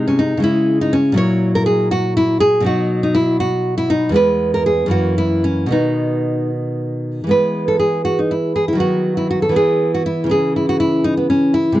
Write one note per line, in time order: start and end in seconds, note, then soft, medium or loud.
0.00 0.37 C3 medium
0.00 0.39 G#3 medium
0.08 0.20 C#4 medium
0.19 0.43 D#4 medium
0.37 1.13 C#3 medium
0.37 1.14 G#3 medium
0.42 0.92 C#4 medium
0.42 0.79 E4 medium
0.81 0.94 D#4 medium
0.93 1.16 C#4 medium
1.12 2.58 A#2 medium
1.12 2.59 F#3 medium
1.12 2.16 E4 medium
1.18 1.54 C#5 loud
1.55 1.66 A#4 medium
1.66 1.90 G#4 medium
1.91 2.15 F#4 medium
2.17 2.40 E4 medium
2.40 2.64 G#4 loud
2.60 4.10 B2 medium
2.60 4.11 F#3 medium
2.64 3.02 D#4 medium
2.64 3.01 F#4 medium
3.03 3.15 D#4 medium
3.15 3.39 E4 medium
3.40 3.76 F#4 medium
3.78 3.90 E4 medium
3.90 4.14 D#4 medium
4.09 4.86 E2 medium
4.09 4.87 G#3 medium
4.14 4.90 B3 medium
4.14 4.53 B4 medium
4.54 4.66 A#4 medium
4.66 4.91 G#4 medium
4.86 5.67 F#2 medium
4.86 5.68 E3 medium
4.86 5.69 A#3 medium
4.91 5.17 F#4 medium
5.18 5.44 E4 medium
5.44 5.71 C#4 medium
5.66 7.23 B2 medium
5.66 7.26 D#3 soft
5.71 7.27 B3 soft
5.71 6.50 D#4 medium
7.24 8.72 E3 soft
7.24 8.75 G#3 soft
7.29 8.77 B3 soft
7.29 7.67 B4 medium
7.68 7.79 A4 medium
7.79 8.04 G#4 medium
8.05 8.19 F#4 medium
8.19 8.32 D#4 medium
8.31 8.55 E4 medium
8.56 8.68 G#4 medium
8.68 8.80 E4 medium
8.73 9.51 D#3 medium
8.73 9.49 F#3 soft
8.78 9.51 B3 soft
8.78 9.17 F#4 medium
9.17 9.30 E4 medium
9.31 9.42 F#4 medium
9.42 9.56 A4 medium
9.49 10.25 E3 medium
9.49 10.27 B3 soft
9.56 9.93 G#4 medium
9.94 10.05 F#4 medium
10.06 10.30 E4 medium
10.24 11.71 C#3 medium
10.24 11.72 E3 soft
10.29 11.29 C#4 medium
10.29 10.55 G#4 medium
10.56 10.69 E4 medium
10.69 10.80 F#4 medium
10.80 11.04 E4 medium
11.04 11.17 D#4 medium
11.17 11.29 B3 medium
11.30 11.54 C#4 medium
11.54 11.78 E4 medium
11.72 11.80 C3 medium
11.72 11.80 G#3 soft